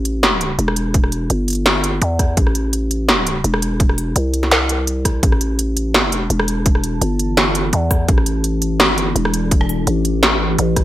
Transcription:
Already playing: A1
0.05 closed hi-hat
0.23 snare
0.41 closed hi-hat
0.59 E1, closed hi-hat
0.68 cross-stick
0.76 closed hi-hat
0.94 kick, closed hi-hat
1.04 cross-stick
1.12 closed hi-hat
1.30 G1, closed hi-hat
1.48 closed hi-hat
1.50 closed hi-hat
1.53 closed hi-hat
1.55 closed hi-hat
1.66 snare
1.84 closed hi-hat
2.02 E2, closed hi-hat
2.19 kick, cross-stick, closed hi-hat
2.37 A1, kick, closed hi-hat
2.47 cross-stick
2.55 closed hi-hat
2.73 closed hi-hat
2.91 closed hi-hat
3.09 snare
3.27 closed hi-hat
3.44 E1, closed hi-hat
3.54 cross-stick
3.62 closed hi-hat
3.80 kick, closed hi-hat
3.89 cross-stick
3.98 closed hi-hat
4.16 C2, closed hi-hat
4.34 closed hi-hat
4.43 snare
4.51 snare
4.69 closed hi-hat
4.87 closed hi-hat
5.05 kick, cross-stick, closed hi-hat
5.23 A1 E3 E4 A4 A5, kick, closed hi-hat
5.32 cross-stick
5.41 closed hi-hat
5.59 closed hi-hat
5.77 closed hi-hat
5.94 snare
6.12 closed hi-hat
6.30 E1, closed hi-hat
6.40 cross-stick
6.48 closed hi-hat
6.66 kick, closed hi-hat
6.75 cross-stick
6.84 closed hi-hat
7.01 G1, closed hi-hat
7.19 closed hi-hat
7.37 snare
7.55 closed hi-hat
7.73 E2, closed hi-hat
7.91 kick, cross-stick, closed hi-hat
8.08 A1 D5, kick, closed hi-hat
8.18 cross-stick
8.26 closed hi-hat
8.44 closed hi-hat
8.62 closed hi-hat
8.80 G#1, snare
8.98 closed hi-hat
9.16 E1, closed hi-hat
9.25 cross-stick
9.34 closed hi-hat
9.51 kick, closed hi-hat
9.61 cross-stick
9.69 closed hi-hat
9.87 A1, closed hi-hat
10.05 closed hi-hat
10.23 snare
10.59 A1, closed hi-hat
10.76 kick, cross-stick, closed hi-hat

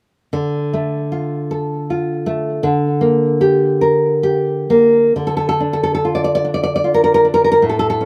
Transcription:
0.33 D3
0.73 A3
1.12 F4
1.51 A4
1.90 F4
2.26 A3
2.63 D3
3.01 A#3
3.41 G4
3.81 A#4
4.23 G4
4.70 A#3
5.16 D3
5.27 A4
5.37 A4
5.49 A4
5.60 D4
5.73 A4
5.83 A4
5.95 A4
6.05 F4
6.15 D5
6.24 D5
6.35 D5
6.45 D4
6.54 D5
6.63 D5
6.76 D5
6.84 F4
6.94 A#4
7.04 A#4
7.14 A#4
7.25 D4
7.34 A#4
7.44 A#4
7.52 A#4
7.62 A2
7.69 A4
7.79 A4
7.90 A4
8.01 C#4

